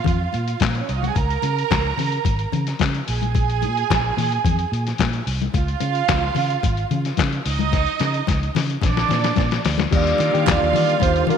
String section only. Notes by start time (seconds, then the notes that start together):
Already playing: F4 F5
0.68 A#3 A#4
0.75 C4 C5
0.81 C#4 C#5
0.89 D#4 D#5
0.96 F4 F5
1.02 F#4 F#5
1.09 G#4 G#5
1.15 A#4 A#5
3.07 G#4 G#5
5.54 F4 F5
7.46 D#4 D#5
8.83 D4 D5
9.93 F4 F5